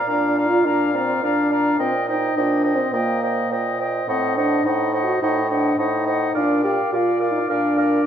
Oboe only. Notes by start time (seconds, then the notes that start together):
0.09 F5
0.38 F5
0.67 F5
0.96 F5
1.24 F5
1.52 F5
1.79 D#5
2.08 D#5
2.36 D#5
2.64 D#5
2.93 D#5
3.23 D#5
3.52 D#5
3.80 D#5
4.09 D#5
4.37 D#5
4.65 D#5
4.93 D#5
5.21 D#5
5.50 D#5
5.78 D#5
6.06 D#5
6.34 D5
6.63 D5
6.92 D5
7.20 D5
7.49 D5
7.78 D5